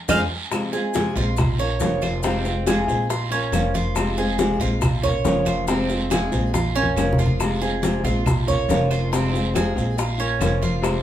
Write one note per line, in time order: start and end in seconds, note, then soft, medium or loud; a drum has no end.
0.08 0.25 F2 loud
0.08 0.22 F3 loud
0.08 0.23 G#3 medium
0.08 0.23 C4 medium
0.08 0.23 D#4 medium
0.08 0.23 F4 medium
0.08 0.23 G#4 medium
0.08 0.20 F5 medium
0.08 low bongo loud
0.08 high conga loud
0.08 long guiro loud
0.08 claves loud
0.08 maracas medium
0.51 0.72 C3 medium
0.51 0.73 F3 medium
0.51 0.72 G#3 medium
0.51 0.73 C4 medium
0.51 0.72 F4 medium
0.51 high bongo medium
0.51 high conga soft
0.51 long guiro medium
0.51 claves medium
0.51 maracas medium
0.73 0.94 G#3 soft
0.73 0.95 C4 soft
0.73 0.94 F4 medium
0.73 1.15 G#4 medium
0.73 high bongo soft
0.73 high conga soft
0.73 maracas soft
0.94 1.15 C3 medium
0.94 1.16 F3 medium
0.94 1.16 G#3 medium
0.94 1.16 C4 medium
0.94 1.15 F4 medium
0.94 high bongo medium
0.94 high conga medium
0.94 short guiro medium
0.94 maracas medium
1.16 1.77 A#1 medium
1.16 1.38 G#3 soft
1.16 1.37 C4 soft
1.16 1.37 F4 soft
1.16 1.58 F4 medium
1.16 high bongo soft
1.16 high conga soft
1.16 short guiro medium
1.16 maracas soft
1.37 muted nylon-string guitar stroke medium
1.37 high bongo medium
1.37 high conga soft
1.37 low conga medium
1.37 long guiro medium
1.37 claves medium
1.37 maracas medium
1.59 1.79 A#3 soft
1.59 1.80 C#4 soft
1.59 1.80 F4 medium
1.59 2.01 C#5 medium
1.59 high conga soft
1.59 maracas soft
1.80 2.82 F1 medium
1.80 2.23 F3 medium
1.80 2.23 A#3 medium
1.80 2.23 C#4 medium
1.80 2.24 F4 medium
1.80 high bongo soft
1.80 low bongo medium
1.80 high conga medium
1.80 short guiro medium
1.80 maracas medium
2.02 2.23 F4 medium
2.02 high bongo soft
2.02 high conga medium
2.02 short guiro medium
2.02 claves medium
2.02 maracas soft
2.23 2.45 C3 medium
2.23 2.45 F3 medium
2.23 2.45 G#3 medium
2.23 2.66 C4 medium
2.23 2.46 C4 medium
2.23 2.44 F4 medium
2.23 high bongo medium
2.23 high conga soft
2.23 long guiro medium
2.23 maracas medium
2.45 2.67 G#3 soft
2.45 2.67 C4 soft
2.45 2.66 F4 medium
2.45 high bongo soft
2.45 high conga soft
2.45 maracas soft
2.66 2.87 C3 medium
2.66 2.88 F3 medium
2.66 2.88 G#3 medium
2.66 2.88 C4 medium
2.66 2.87 F4 medium
2.66 3.09 G#4 medium
2.66 high bongo medium
2.66 high conga loud
2.66 short guiro medium
2.66 claves medium
2.66 maracas medium
2.88 3.49 A#1 medium
2.88 3.09 G#3 soft
2.88 3.09 C4 soft
2.88 3.09 F4 medium
2.88 high bongo soft
2.88 high conga soft
2.88 short guiro medium
2.88 maracas soft
3.09 3.31 F4 medium
3.09 muted nylon-string guitar stroke medium
3.09 high bongo medium
3.09 high conga soft
3.09 long guiro medium
3.09 maracas medium
3.31 3.53 A#3 soft
3.31 3.52 C#4 soft
3.31 3.73 C#4 medium
3.31 3.52 F4 medium
3.31 high conga soft
3.31 maracas soft
3.52 4.54 F1 medium
3.52 3.95 F3 medium
3.52 3.96 A#3 medium
3.52 3.96 C#4 medium
3.52 3.96 F4 medium
3.52 high bongo soft
3.52 low bongo medium
3.52 high conga medium
3.52 short guiro medium
3.52 claves medium
3.52 maracas medium
3.74 4.17 F4 medium
3.74 high bongo soft
3.74 high conga medium
3.74 short guiro medium
3.74 maracas soft
3.95 4.16 C3 medium
3.95 4.17 F3 medium
3.95 4.17 G#3 medium
3.95 4.17 C4 medium
3.95 4.16 F4 medium
3.95 high bongo medium
3.95 high conga soft
3.95 long guiro medium
3.95 claves medium
3.95 maracas medium
4.17 4.39 G#3 soft
4.17 4.39 C4 soft
4.17 4.38 F4 medium
4.17 4.60 G#4 medium
4.17 high bongo soft
4.17 high conga soft
4.17 maracas soft
4.38 4.60 C3 medium
4.38 4.60 F3 medium
4.38 4.60 G#3 medium
4.38 4.61 C4 medium
4.38 4.59 F4 medium
4.38 high bongo medium
4.38 high conga loud
4.38 short guiro medium
4.38 maracas medium
4.59 5.21 A#1 medium
4.59 4.82 G#3 soft
4.59 4.82 C4 soft
4.59 4.81 F4 medium
4.59 5.02 F4 medium
4.59 high bongo soft
4.59 high conga soft
4.59 short guiro medium
4.59 maracas soft
4.81 muted nylon-string guitar stroke medium
4.81 high bongo medium
4.81 high conga soft
4.81 low conga medium
4.81 long guiro medium
4.81 claves medium
4.81 maracas medium
5.03 5.25 A#3 soft
5.03 5.25 C#4 soft
5.03 5.24 F4 medium
5.03 5.45 C#5 medium
5.03 high conga soft
5.03 low conga medium
5.03 maracas soft
5.24 6.26 F1 medium
5.24 5.67 F3 medium
5.24 5.68 A#3 medium
5.24 5.68 C#4 medium
5.24 5.68 F4 medium
5.24 high bongo soft
5.24 low bongo medium
5.24 high conga medium
5.24 short guiro medium
5.24 maracas medium
5.45 5.67 F4 medium
5.45 high bongo soft
5.45 high conga medium
5.45 short guiro medium
5.45 claves medium
5.45 maracas soft
5.67 5.89 C3 medium
5.67 5.89 F3 medium
5.67 5.90 G#3 medium
5.67 6.10 C4 medium
5.67 5.90 C4 medium
5.67 5.89 F4 medium
5.67 high bongo medium
5.67 high conga soft
5.67 long guiro medium
5.67 maracas medium
5.89 6.11 G#3 soft
5.89 6.11 C4 medium
5.89 6.11 F4 soft
5.89 high bongo soft
5.89 high conga soft
5.89 maracas soft
6.10 6.32 C3 medium
6.10 6.32 F3 medium
6.10 6.33 G#3 medium
6.10 6.33 C4 medium
6.10 6.31 F4 medium
6.10 6.53 G#4 medium
6.10 high bongo medium
6.10 high conga medium
6.10 short guiro medium
6.10 claves medium
6.10 maracas medium
6.32 6.93 A#1 loud
6.32 6.54 G#3 soft
6.32 6.54 C4 soft
6.32 6.53 F4 soft
6.32 high bongo soft
6.32 high conga soft
6.32 short guiro medium
6.32 maracas soft
6.54 6.75 F4 medium
6.54 muted nylon-string guitar stroke medium
6.54 high bongo medium
6.54 high conga medium
6.54 long guiro medium
6.54 maracas medium
6.76 6.96 A#3 soft
6.76 7.17 C#4 medium
6.76 6.97 C#4 soft
6.76 6.96 F4 soft
6.76 maracas soft
6.83 high conga medium
6.96 7.98 F1 medium
6.96 7.39 F3 medium
6.96 7.40 A#3 medium
6.96 7.40 C#4 medium
6.96 7.40 F4 medium
6.96 high bongo soft
6.96 low bongo medium
6.96 short guiro medium
6.96 claves medium
6.96 maracas medium
7.12 low conga medium
7.18 7.61 F4 medium
7.18 high bongo soft
7.18 short guiro medium
7.18 maracas soft
7.26 low conga medium
7.40 7.61 C3 medium
7.40 7.61 F3 medium
7.40 7.62 G#3 medium
7.40 7.62 C4 medium
7.40 7.61 F4 medium
7.40 high bongo medium
7.40 high conga soft
7.40 long guiro medium
7.40 claves medium
7.40 maracas medium
7.61 7.83 G#3 soft
7.61 7.83 C4 soft
7.61 7.82 F4 soft
7.61 8.03 G#4 medium
7.61 high bongo soft
7.61 high conga soft
7.61 maracas soft
7.82 8.04 C3 medium
7.82 8.04 F3 medium
7.82 8.04 G#3 medium
7.82 8.04 C4 medium
7.82 8.03 F4 medium
7.82 high bongo medium
7.82 high conga medium
7.82 short guiro medium
7.82 maracas medium
8.04 8.65 A#1 loud
8.04 8.25 G#3 soft
8.04 8.26 C4 soft
8.04 8.25 F4 medium
8.04 8.46 F4 medium
8.04 high bongo soft
8.04 high conga soft
8.04 short guiro medium
8.04 maracas soft
8.25 muted nylon-string guitar stroke medium
8.25 high bongo medium
8.25 high conga soft
8.25 low conga medium
8.25 long guiro medium
8.25 claves medium
8.25 maracas medium
8.47 8.69 A#3 soft
8.47 8.69 C#4 soft
8.47 8.68 F4 medium
8.47 8.90 C#5 medium
8.47 high conga soft
8.47 low conga medium
8.47 maracas soft
8.68 9.70 F1 medium
8.68 9.11 F3 medium
8.68 9.12 A#3 medium
8.68 9.12 C#4 medium
8.68 9.13 F4 medium
8.68 high bongo soft
8.68 low bongo medium
8.68 high conga medium
8.68 short guiro medium
8.68 maracas medium
8.91 9.12 F4 medium
8.91 high bongo soft
8.91 short guiro medium
8.91 claves medium
8.91 maracas soft
9.12 9.33 C3 medium
9.12 9.33 F3 medium
9.12 9.34 G#3 medium
9.12 9.54 C4 medium
9.12 9.34 C4 medium
9.12 9.32 F4 medium
9.12 high bongo medium
9.12 high conga soft
9.12 long guiro medium
9.12 maracas medium
9.33 9.54 G#3 soft
9.33 9.55 C4 soft
9.33 9.54 F4 medium
9.33 high bongo soft
9.33 high conga soft
9.33 maracas soft
9.54 9.75 C3 medium
9.54 9.76 F3 medium
9.54 9.76 G#3 medium
9.54 9.76 C4 medium
9.54 9.74 F4 medium
9.54 9.97 G#4 medium
9.54 high bongo medium
9.54 high conga medium
9.54 short guiro medium
9.54 claves medium
9.54 maracas medium
9.75 10.37 A#1 medium
9.75 9.97 G#3 soft
9.75 9.97 C4 soft
9.75 9.97 F4 soft
9.75 high bongo soft
9.75 high conga soft
9.75 short guiro medium
9.75 maracas soft
9.97 10.19 F4 medium
9.97 muted nylon-string guitar stroke medium
9.97 high bongo medium
9.97 high conga soft
9.97 long guiro medium
9.97 maracas medium
10.18 10.40 A#3 soft
10.18 10.40 C#4 soft
10.18 10.61 C#4 medium
10.18 10.39 F4 soft
10.18 high conga soft
10.18 maracas soft
10.39 11.02 F1 medium
10.39 10.81 F3 medium
10.39 10.83 A#3 medium
10.39 10.84 C#4 medium
10.39 10.83 F4 medium
10.39 high bongo soft
10.39 low bongo medium
10.39 high conga medium
10.39 short guiro medium
10.39 claves medium
10.39 maracas medium
10.62 11.02 F4 medium
10.62 high bongo soft
10.62 high conga medium
10.62 short guiro medium
10.62 maracas soft
10.82 11.02 C3 medium
10.82 11.02 F3 medium
10.82 11.02 G#3 medium
10.82 11.02 C4 medium
10.82 11.02 F4 medium
10.82 high bongo medium
10.82 long guiro medium
10.82 claves medium
10.82 maracas medium